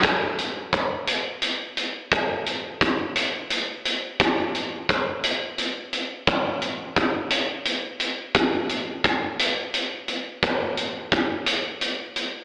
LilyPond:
\new DrumStaff \with { instrumentName = "Drums" } \drummode { \time 6/8 \tempo 4. = 58 <hh bd>8 hh8 <hh bd>8 hh8 hh8 hh8 | <hh bd>8 hh8 <hh bd>8 hh8 hh8 hh8 | <hh bd>8 hh8 <hh bd>8 hh8 hh8 hh8 | <hh bd>8 hh8 <hh bd>8 hh8 hh8 hh8 |
<hh bd>8 hh8 <hh bd>8 hh8 hh8 hh8 | <hh bd>8 hh8 <hh bd>8 hh8 hh8 hh8 | }